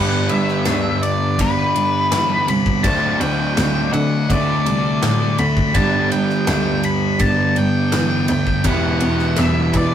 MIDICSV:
0, 0, Header, 1, 7, 480
1, 0, Start_track
1, 0, Key_signature, 1, "major"
1, 0, Tempo, 725514
1, 1879, Time_signature, 4, 2, 24, 8
1, 6579, End_track
2, 0, Start_track
2, 0, Title_t, "Lead electric guitar"
2, 0, Program_c, 0, 29
2, 0, Note_on_c, 0, 78, 90
2, 199, Note_on_c, 0, 76, 111
2, 205, Note_off_c, 0, 78, 0
2, 678, Note_off_c, 0, 76, 0
2, 680, Note_on_c, 0, 74, 95
2, 926, Note_off_c, 0, 74, 0
2, 930, Note_on_c, 0, 71, 85
2, 1651, Note_on_c, 0, 83, 92
2, 1666, Note_off_c, 0, 71, 0
2, 1874, Note_on_c, 0, 81, 102
2, 1892, Note_off_c, 0, 83, 0
2, 2118, Note_off_c, 0, 81, 0
2, 2120, Note_on_c, 0, 79, 113
2, 2597, Note_off_c, 0, 79, 0
2, 2600, Note_on_c, 0, 78, 91
2, 2847, Note_off_c, 0, 78, 0
2, 2856, Note_on_c, 0, 74, 96
2, 3566, Note_on_c, 0, 83, 96
2, 3590, Note_off_c, 0, 74, 0
2, 3805, Note_on_c, 0, 81, 108
2, 3810, Note_off_c, 0, 83, 0
2, 4044, Note_off_c, 0, 81, 0
2, 4046, Note_on_c, 0, 79, 105
2, 4530, Note_on_c, 0, 83, 96
2, 4538, Note_off_c, 0, 79, 0
2, 4771, Note_on_c, 0, 81, 92
2, 4772, Note_off_c, 0, 83, 0
2, 5013, Note_off_c, 0, 81, 0
2, 5018, Note_on_c, 0, 79, 99
2, 5495, Note_off_c, 0, 79, 0
2, 5503, Note_on_c, 0, 79, 84
2, 5732, Note_off_c, 0, 79, 0
2, 5734, Note_on_c, 0, 78, 87
2, 6212, Note_on_c, 0, 76, 85
2, 6221, Note_off_c, 0, 78, 0
2, 6453, Note_off_c, 0, 76, 0
2, 6462, Note_on_c, 0, 74, 81
2, 6579, Note_off_c, 0, 74, 0
2, 6579, End_track
3, 0, Start_track
3, 0, Title_t, "Overdriven electric guitar"
3, 0, Program_c, 1, 29
3, 0, Note_on_c, 1, 55, 82
3, 0, Note_on_c, 1, 59, 87
3, 0, Note_on_c, 1, 62, 86
3, 0, Note_on_c, 1, 67, 83
3, 0, Note_on_c, 1, 71, 94
3, 1859, Note_off_c, 1, 55, 0
3, 1863, Note_off_c, 1, 59, 0
3, 1867, Note_off_c, 1, 67, 0
3, 1869, Note_off_c, 1, 71, 0
3, 1873, Note_on_c, 1, 50, 84
3, 1876, Note_on_c, 1, 54, 81
3, 1881, Note_off_c, 1, 62, 0
3, 1883, Note_on_c, 1, 57, 89
3, 1884, Note_on_c, 1, 62, 106
3, 1888, Note_on_c, 1, 66, 103
3, 1890, Note_on_c, 1, 72, 93
3, 3783, Note_off_c, 1, 50, 0
3, 3785, Note_off_c, 1, 54, 0
3, 3788, Note_off_c, 1, 57, 0
3, 3790, Note_off_c, 1, 66, 0
3, 3791, Note_off_c, 1, 72, 0
3, 3799, Note_on_c, 1, 55, 89
3, 3808, Note_on_c, 1, 59, 93
3, 3809, Note_off_c, 1, 62, 0
3, 3812, Note_on_c, 1, 62, 84
3, 3816, Note_on_c, 1, 67, 96
3, 5714, Note_off_c, 1, 55, 0
3, 5717, Note_on_c, 1, 52, 80
3, 5722, Note_off_c, 1, 59, 0
3, 5725, Note_on_c, 1, 59, 96
3, 5728, Note_off_c, 1, 62, 0
3, 5729, Note_off_c, 1, 67, 0
3, 5730, Note_on_c, 1, 64, 102
3, 5732, Note_on_c, 1, 67, 98
3, 6579, Note_off_c, 1, 52, 0
3, 6579, Note_off_c, 1, 59, 0
3, 6579, Note_off_c, 1, 64, 0
3, 6579, Note_off_c, 1, 67, 0
3, 6579, End_track
4, 0, Start_track
4, 0, Title_t, "Clean electric guitar"
4, 0, Program_c, 2, 27
4, 435, Note_on_c, 2, 62, 76
4, 922, Note_on_c, 2, 59, 68
4, 1159, Note_off_c, 2, 62, 0
4, 1162, Note_on_c, 2, 62, 64
4, 1628, Note_off_c, 2, 59, 0
4, 1636, Note_on_c, 2, 59, 61
4, 1877, Note_off_c, 2, 59, 0
4, 1879, Note_on_c, 2, 54, 83
4, 2123, Note_on_c, 2, 66, 78
4, 2359, Note_off_c, 2, 62, 0
4, 2361, Note_on_c, 2, 60, 79
4, 2599, Note_off_c, 2, 54, 0
4, 2607, Note_on_c, 2, 54, 71
4, 2847, Note_on_c, 2, 57, 75
4, 3079, Note_off_c, 2, 60, 0
4, 3087, Note_on_c, 2, 60, 73
4, 3318, Note_off_c, 2, 54, 0
4, 3322, Note_off_c, 2, 66, 0
4, 3326, Note_on_c, 2, 54, 78
4, 3561, Note_off_c, 2, 57, 0
4, 3569, Note_on_c, 2, 57, 64
4, 3803, Note_off_c, 2, 54, 0
4, 3804, Note_off_c, 2, 57, 0
4, 3804, Note_off_c, 2, 60, 0
4, 4288, Note_on_c, 2, 62, 80
4, 4764, Note_on_c, 2, 59, 76
4, 5004, Note_off_c, 2, 62, 0
4, 5006, Note_on_c, 2, 62, 66
4, 5482, Note_off_c, 2, 59, 0
4, 5485, Note_on_c, 2, 59, 65
4, 5727, Note_off_c, 2, 59, 0
4, 5729, Note_on_c, 2, 59, 89
4, 5969, Note_on_c, 2, 67, 75
4, 6206, Note_off_c, 2, 62, 0
4, 6208, Note_on_c, 2, 62, 81
4, 6434, Note_off_c, 2, 59, 0
4, 6442, Note_on_c, 2, 59, 60
4, 6579, Note_off_c, 2, 59, 0
4, 6579, Note_off_c, 2, 62, 0
4, 6579, Note_off_c, 2, 67, 0
4, 6579, End_track
5, 0, Start_track
5, 0, Title_t, "Distorted electric guitar"
5, 0, Program_c, 3, 30
5, 0, Note_on_c, 3, 43, 81
5, 0, Note_on_c, 3, 50, 88
5, 0, Note_on_c, 3, 55, 86
5, 899, Note_off_c, 3, 43, 0
5, 906, Note_off_c, 3, 50, 0
5, 910, Note_off_c, 3, 55, 0
5, 917, Note_on_c, 3, 43, 78
5, 928, Note_on_c, 3, 50, 75
5, 937, Note_on_c, 3, 55, 80
5, 1864, Note_off_c, 3, 43, 0
5, 1867, Note_off_c, 3, 50, 0
5, 1874, Note_off_c, 3, 55, 0
5, 1875, Note_on_c, 3, 50, 77
5, 1886, Note_on_c, 3, 57, 79
5, 1893, Note_on_c, 3, 62, 89
5, 2823, Note_off_c, 3, 50, 0
5, 2829, Note_off_c, 3, 57, 0
5, 2832, Note_on_c, 3, 50, 77
5, 2845, Note_on_c, 3, 57, 85
5, 2851, Note_off_c, 3, 62, 0
5, 2854, Note_on_c, 3, 62, 80
5, 3782, Note_off_c, 3, 50, 0
5, 3788, Note_off_c, 3, 57, 0
5, 3797, Note_on_c, 3, 43, 90
5, 3809, Note_on_c, 3, 50, 89
5, 3817, Note_on_c, 3, 55, 93
5, 4745, Note_off_c, 3, 43, 0
5, 4751, Note_off_c, 3, 50, 0
5, 4759, Note_on_c, 3, 43, 83
5, 4768, Note_on_c, 3, 50, 83
5, 4774, Note_off_c, 3, 55, 0
5, 4777, Note_on_c, 3, 55, 94
5, 5169, Note_off_c, 3, 62, 0
5, 5705, Note_off_c, 3, 43, 0
5, 5710, Note_off_c, 3, 50, 0
5, 5720, Note_on_c, 3, 40, 74
5, 5731, Note_on_c, 3, 47, 90
5, 5734, Note_off_c, 3, 55, 0
5, 5737, Note_on_c, 3, 52, 87
5, 6579, Note_off_c, 3, 40, 0
5, 6579, Note_off_c, 3, 47, 0
5, 6579, Note_off_c, 3, 52, 0
5, 6579, End_track
6, 0, Start_track
6, 0, Title_t, "Cello"
6, 0, Program_c, 4, 42
6, 0, Note_on_c, 4, 43, 80
6, 188, Note_off_c, 4, 43, 0
6, 196, Note_on_c, 4, 43, 87
6, 428, Note_off_c, 4, 43, 0
6, 439, Note_on_c, 4, 38, 90
6, 901, Note_off_c, 4, 38, 0
6, 921, Note_on_c, 4, 43, 85
6, 1151, Note_off_c, 4, 43, 0
6, 1154, Note_on_c, 4, 43, 86
6, 1387, Note_off_c, 4, 43, 0
6, 1399, Note_on_c, 4, 52, 80
6, 1630, Note_off_c, 4, 52, 0
6, 1639, Note_on_c, 4, 36, 94
6, 1870, Note_off_c, 4, 36, 0
6, 1880, Note_on_c, 4, 38, 86
6, 2111, Note_off_c, 4, 38, 0
6, 2120, Note_on_c, 4, 38, 91
6, 2351, Note_off_c, 4, 38, 0
6, 2366, Note_on_c, 4, 38, 97
6, 2594, Note_off_c, 4, 38, 0
6, 2597, Note_on_c, 4, 50, 87
6, 2829, Note_off_c, 4, 50, 0
6, 2842, Note_on_c, 4, 38, 90
6, 3072, Note_off_c, 4, 38, 0
6, 3083, Note_on_c, 4, 36, 85
6, 3312, Note_off_c, 4, 36, 0
6, 3323, Note_on_c, 4, 45, 92
6, 3553, Note_off_c, 4, 45, 0
6, 3565, Note_on_c, 4, 38, 89
6, 3794, Note_off_c, 4, 38, 0
6, 3801, Note_on_c, 4, 43, 89
6, 4032, Note_off_c, 4, 43, 0
6, 4054, Note_on_c, 4, 43, 81
6, 4279, Note_off_c, 4, 43, 0
6, 4284, Note_on_c, 4, 38, 98
6, 4745, Note_off_c, 4, 38, 0
6, 4763, Note_on_c, 4, 43, 92
6, 4993, Note_off_c, 4, 43, 0
6, 5005, Note_on_c, 4, 43, 80
6, 5234, Note_off_c, 4, 43, 0
6, 5245, Note_on_c, 4, 52, 88
6, 5474, Note_off_c, 4, 52, 0
6, 5484, Note_on_c, 4, 38, 92
6, 5713, Note_off_c, 4, 38, 0
6, 5721, Note_on_c, 4, 40, 83
6, 5952, Note_off_c, 4, 40, 0
6, 5966, Note_on_c, 4, 40, 90
6, 6194, Note_off_c, 4, 40, 0
6, 6205, Note_on_c, 4, 40, 93
6, 6433, Note_off_c, 4, 40, 0
6, 6442, Note_on_c, 4, 52, 88
6, 6579, Note_off_c, 4, 52, 0
6, 6579, End_track
7, 0, Start_track
7, 0, Title_t, "Drums"
7, 193, Note_on_c, 9, 51, 71
7, 259, Note_off_c, 9, 51, 0
7, 317, Note_on_c, 9, 38, 36
7, 383, Note_off_c, 9, 38, 0
7, 433, Note_on_c, 9, 38, 105
7, 433, Note_on_c, 9, 51, 94
7, 499, Note_off_c, 9, 38, 0
7, 499, Note_off_c, 9, 51, 0
7, 680, Note_on_c, 9, 51, 71
7, 746, Note_off_c, 9, 51, 0
7, 919, Note_on_c, 9, 36, 101
7, 919, Note_on_c, 9, 51, 90
7, 985, Note_off_c, 9, 36, 0
7, 985, Note_off_c, 9, 51, 0
7, 1162, Note_on_c, 9, 51, 72
7, 1228, Note_off_c, 9, 51, 0
7, 1401, Note_on_c, 9, 38, 124
7, 1401, Note_on_c, 9, 51, 107
7, 1467, Note_off_c, 9, 38, 0
7, 1467, Note_off_c, 9, 51, 0
7, 1642, Note_on_c, 9, 51, 72
7, 1708, Note_off_c, 9, 51, 0
7, 1760, Note_on_c, 9, 36, 92
7, 1826, Note_off_c, 9, 36, 0
7, 1878, Note_on_c, 9, 51, 92
7, 1880, Note_on_c, 9, 36, 119
7, 1944, Note_off_c, 9, 51, 0
7, 1946, Note_off_c, 9, 36, 0
7, 2122, Note_on_c, 9, 51, 75
7, 2188, Note_off_c, 9, 51, 0
7, 2363, Note_on_c, 9, 38, 103
7, 2363, Note_on_c, 9, 51, 91
7, 2429, Note_off_c, 9, 38, 0
7, 2429, Note_off_c, 9, 51, 0
7, 2603, Note_on_c, 9, 51, 64
7, 2669, Note_off_c, 9, 51, 0
7, 2843, Note_on_c, 9, 36, 95
7, 2845, Note_on_c, 9, 51, 83
7, 2909, Note_off_c, 9, 36, 0
7, 2911, Note_off_c, 9, 51, 0
7, 3085, Note_on_c, 9, 51, 70
7, 3151, Note_off_c, 9, 51, 0
7, 3325, Note_on_c, 9, 51, 93
7, 3326, Note_on_c, 9, 38, 122
7, 3391, Note_off_c, 9, 51, 0
7, 3392, Note_off_c, 9, 38, 0
7, 3562, Note_on_c, 9, 51, 73
7, 3628, Note_off_c, 9, 51, 0
7, 3684, Note_on_c, 9, 36, 85
7, 3750, Note_off_c, 9, 36, 0
7, 3801, Note_on_c, 9, 51, 84
7, 3803, Note_on_c, 9, 36, 115
7, 3867, Note_off_c, 9, 51, 0
7, 3869, Note_off_c, 9, 36, 0
7, 4046, Note_on_c, 9, 51, 69
7, 4113, Note_off_c, 9, 51, 0
7, 4165, Note_on_c, 9, 38, 33
7, 4231, Note_off_c, 9, 38, 0
7, 4282, Note_on_c, 9, 38, 107
7, 4282, Note_on_c, 9, 51, 94
7, 4348, Note_off_c, 9, 51, 0
7, 4349, Note_off_c, 9, 38, 0
7, 4522, Note_on_c, 9, 51, 68
7, 4588, Note_off_c, 9, 51, 0
7, 4760, Note_on_c, 9, 51, 84
7, 4762, Note_on_c, 9, 36, 106
7, 4826, Note_off_c, 9, 51, 0
7, 4828, Note_off_c, 9, 36, 0
7, 5002, Note_on_c, 9, 51, 64
7, 5068, Note_off_c, 9, 51, 0
7, 5241, Note_on_c, 9, 51, 98
7, 5242, Note_on_c, 9, 38, 110
7, 5307, Note_off_c, 9, 51, 0
7, 5308, Note_off_c, 9, 38, 0
7, 5478, Note_on_c, 9, 51, 77
7, 5545, Note_off_c, 9, 51, 0
7, 5602, Note_on_c, 9, 36, 86
7, 5668, Note_off_c, 9, 36, 0
7, 5717, Note_on_c, 9, 51, 97
7, 5721, Note_on_c, 9, 36, 101
7, 5783, Note_off_c, 9, 51, 0
7, 5787, Note_off_c, 9, 36, 0
7, 5957, Note_on_c, 9, 51, 80
7, 6023, Note_off_c, 9, 51, 0
7, 6078, Note_on_c, 9, 38, 34
7, 6144, Note_off_c, 9, 38, 0
7, 6195, Note_on_c, 9, 51, 88
7, 6196, Note_on_c, 9, 38, 97
7, 6262, Note_off_c, 9, 38, 0
7, 6262, Note_off_c, 9, 51, 0
7, 6440, Note_on_c, 9, 36, 79
7, 6441, Note_on_c, 9, 51, 76
7, 6506, Note_off_c, 9, 36, 0
7, 6507, Note_off_c, 9, 51, 0
7, 6579, End_track
0, 0, End_of_file